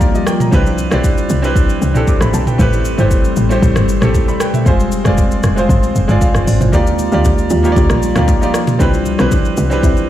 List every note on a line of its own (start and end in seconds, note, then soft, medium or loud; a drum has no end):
0.00 0.50 F3 medium
0.00 0.50 G3 medium
0.00 0.55 A#3 loud
0.00 0.55 D#4 medium
0.00 0.49 F4 medium
0.00 0.55 F4 medium
0.00 0.15 G4 medium
0.00 0.28 A#4 loud
0.00 0.41 D5 loud
0.00 kick loud
0.00 shaker medium
0.14 0.26 G4 medium
0.14 0.26 D#5 medium
0.14 shaker medium
0.27 0.40 A#4 medium
0.27 0.40 G5 medium
0.27 cross-stick loud
0.27 shaker loud
0.40 0.65 D5 medium
0.40 0.65 A#5 medium
0.40 mid tom medium
0.40 shaker medium
0.51 0.89 C2 loud
0.51 4.62 G3 medium
0.51 0.83 C4 medium
0.51 6.69 C4 medium
0.51 0.83 D4 medium
0.51 2.57 E4 loud
0.51 0.84 E4 medium
0.51 0.84 G4 medium
0.51 0.85 B4 loud
0.51 kick loud
0.51 shaker medium
0.66 shaker medium
0.78 shaker medium
0.91 1.27 B1 medium
0.91 1.32 C4 medium
0.91 1.33 D4 medium
0.91 1.33 E4 medium
0.91 1.33 G4 medium
0.91 1.34 D5 loud
0.91 cross-stick loud
0.91 shaker soft
1.04 kick medium
1.04 shaker loud
1.18 shaker soft
1.29 1.66 C2 loud
1.29 shaker loud
1.42 1.84 C4 loud
1.42 1.84 D4 medium
1.42 1.85 E4 medium
1.42 1.85 G4 medium
1.42 1.85 B4 loud
1.42 shaker medium
1.56 kick loud
1.56 shaker medium
1.69 shaker medium
1.82 2.06 C2 medium
1.82 shaker medium
1.94 2.15 C4 medium
1.94 2.15 D4 medium
1.94 2.16 E4 medium
1.94 2.16 G4 medium
1.94 2.17 A4 loud
1.94 mid tom medium
1.94 shaker medium
2.07 2.21 D6 medium
2.07 kick loud
2.07 shaker medium
2.21 2.33 A1 medium
2.21 2.33 D5 medium
2.21 2.33 B5 medium
2.21 cross-stick medium
2.21 shaker medium
2.34 2.57 B1 loud
2.34 2.47 C5 medium
2.34 2.46 A5 medium
2.34 shaker loud
2.47 2.60 B4 medium
2.47 2.72 G5 medium
2.47 mid tom medium
2.47 shaker medium
2.58 2.96 A1 loud
2.58 2.90 A3 medium
2.58 2.90 C4 medium
2.58 2.91 E4 medium
2.58 4.64 G4 loud
2.58 2.91 G4 medium
2.58 2.91 B4 loud
2.58 kick loud
2.58 shaker medium
2.73 shaker medium
2.85 shaker medium
2.97 3.34 G1 loud
2.97 3.39 A3 medium
2.97 3.39 C4 medium
2.97 3.40 E4 medium
2.97 3.40 G4 medium
2.97 3.40 C5 loud
2.97 shaker medium
3.11 kick medium
3.11 shaker loud
3.24 shaker soft
3.36 3.61 A1 loud
3.36 shaker medium
3.49 3.91 A3 loud
3.49 3.91 C4 medium
3.49 3.91 E4 medium
3.49 3.92 G4 medium
3.49 3.92 C5 loud
3.49 shaker medium
3.62 3.75 A1 loud
3.62 kick loud
3.62 shaker medium
3.76 4.00 G1 loud
3.76 cross-stick loud
3.76 shaker medium
3.89 shaker medium
4.01 4.14 A1 medium
4.01 4.22 A3 medium
4.01 4.22 C4 medium
4.01 4.23 E4 medium
4.01 4.15 G4 medium
4.01 4.15 A4 loud
4.01 cross-stick loud
4.01 mid tom medium
4.01 shaker medium
4.14 kick loud
4.14 shaker medium
4.28 4.40 D5 medium
4.28 4.40 B5 medium
4.28 shaker medium
4.40 4.54 B4 medium
4.40 4.53 G5 medium
4.40 cross-stick loud
4.40 shaker loud
4.54 4.79 G4 medium
4.54 4.78 E5 medium
4.54 mid tom medium
4.54 shaker medium
4.65 5.03 F1 loud
4.65 4.97 G#3 medium
4.65 6.71 G#3 medium
4.65 4.97 C4 medium
4.65 8.76 F4 medium
4.65 4.98 F4 medium
4.65 4.98 G#4 medium
4.65 4.98 C5 loud
4.65 kick loud
4.65 shaker medium
4.80 shaker medium
4.92 shaker medium
5.04 5.41 F1 loud
5.04 5.46 G#3 medium
5.04 5.46 C4 medium
5.04 5.47 F4 medium
5.04 5.47 G#4 medium
5.04 5.47 D5 loud
5.04 cross-stick medium
5.04 shaker soft
5.18 kick medium
5.18 shaker loud
5.31 shaker medium
5.43 5.68 F1 loud
5.43 cross-stick medium
5.43 shaker medium
5.56 5.98 G#3 loud
5.56 5.98 C4 medium
5.56 5.98 F4 medium
5.56 5.99 G#4 medium
5.56 5.99 C5 loud
5.56 shaker medium
5.69 5.82 G1 loud
5.69 kick loud
5.69 shaker medium
5.83 shaker medium
5.96 6.08 F1 medium
5.96 shaker medium
6.08 6.20 G1 loud
6.08 6.29 G#3 loud
6.08 6.29 C4 medium
6.08 6.22 F4 medium
6.08 6.21 G#4 medium
6.08 6.22 D5 loud
6.08 shaker medium
6.21 6.46 G#4 medium
6.21 6.46 F5 medium
6.21 kick loud
6.21 shaker medium
6.35 6.46 F1 medium
6.35 cross-stick medium
6.35 shaker medium
6.47 6.60 G#1 medium
6.47 6.60 F4 medium
6.47 6.60 D5 medium
6.47 open hi-hat medium
6.47 shaker loud
6.61 6.75 G1 medium
6.61 6.86 E4 medium
6.61 6.85 C5 medium
6.61 mid tom medium
6.61 shaker medium
6.72 7.09 D#2 loud
6.72 8.78 F3 medium
6.72 8.78 G3 medium
6.72 7.04 A#3 loud
6.72 7.04 D#4 medium
6.72 6.85 F4 loud
6.72 7.04 F4 medium
6.72 6.85 G4 medium
6.72 7.05 G4 medium
6.72 6.85 D5 loud
6.72 7.05 D5 loud
6.72 kick loud
6.72 low conga medium
6.72 shaker medium
6.87 shaker medium
6.99 low bongo soft
6.99 shaker medium
7.11 7.48 D2 medium
7.11 7.53 A#3 medium
7.11 7.53 D#4 medium
7.11 7.23 F4 medium
7.11 7.53 F4 medium
7.11 7.23 G4 medium
7.11 7.54 G4 medium
7.11 7.23 D5 medium
7.11 7.54 D5 loud
7.11 shaker soft
7.24 kick medium
7.24 high bongo medium
7.24 low conga medium
7.24 shaker loud
7.38 shaker soft
7.50 7.75 D#2 loud
7.50 7.62 F4 medium
7.50 7.62 G4 medium
7.50 7.63 D5 medium
7.50 shaker medium
7.63 8.04 A#3 loud
7.63 8.05 D#4 medium
7.63 8.05 F4 medium
7.63 8.06 G4 medium
7.63 7.71 C#5 medium
7.63 shaker medium
7.72 8.09 D5 loud
7.76 7.89 D2 loud
7.76 8.12 F4 medium
7.76 8.13 G4 medium
7.76 8.13 D5 loud
7.76 kick loud
7.76 high bongo medium
7.76 low conga medium
7.76 shaker medium
7.90 8.14 A#1 medium
7.90 cross-stick loud
7.90 shaker medium
8.02 shaker medium
8.15 8.27 D2 loud
8.15 8.36 A#3 medium
8.15 8.36 D#4 medium
8.15 8.51 F4 medium
8.15 8.36 F4 medium
8.15 8.51 G4 medium
8.15 8.37 G4 medium
8.15 8.51 D5 medium
8.15 8.37 D5 loud
8.15 cross-stick loud
8.15 mid tom medium
8.15 low bongo medium
8.15 shaker medium
8.28 kick loud
8.28 high bongo medium
8.28 shaker medium
8.41 8.72 A#3 medium
8.41 8.72 D#4 medium
8.41 8.73 F4 medium
8.41 8.73 G4 medium
8.41 8.73 D5 loud
8.41 shaker medium
8.54 8.78 F4 medium
8.54 8.78 G4 medium
8.54 8.78 D5 medium
8.54 cross-stick loud
8.54 shaker loud
8.67 mid tom medium
8.67 low bongo medium
8.67 shaker medium
8.79 9.16 C2 loud
8.79 9.11 C4 loud
8.79 8.92 C4 loud
8.79 10.10 C4 medium
8.79 9.11 D4 medium
8.79 10.10 E4 medium
8.79 8.92 E4 medium
8.79 9.11 E4 medium
8.79 9.12 G4 medium
8.79 10.10 B4 medium
8.79 8.92 B4 loud
8.79 9.12 B4 loud
8.79 kick loud
8.79 low conga medium
8.79 shaker medium
8.94 shaker medium
9.06 low bongo soft
9.06 shaker medium
9.18 9.55 B1 medium
9.18 9.60 C4 loud
9.18 9.30 C4 medium
9.18 9.60 D4 medium
9.18 9.30 E4 medium
9.18 9.60 E4 medium
9.18 9.61 G4 medium
9.18 9.30 B4 medium
9.18 9.61 B4 loud
9.18 cross-stick medium
9.18 shaker soft
9.31 kick medium
9.31 high bongo medium
9.31 low conga medium
9.31 shaker loud
9.45 shaker medium
9.57 9.94 C2 loud
9.57 9.69 C4 medium
9.57 9.69 E4 medium
9.57 9.69 B4 medium
9.57 shaker loud
9.70 10.10 C4 loud
9.70 10.10 D4 medium
9.70 10.10 E4 medium
9.70 10.10 G4 medium
9.70 10.10 B4 loud
9.70 shaker medium
9.83 10.10 C4 loud
9.83 10.10 E4 medium
9.83 10.10 B4 loud
9.83 kick loud
9.83 high bongo medium
9.83 low conga medium
9.83 shaker medium
9.97 shaker medium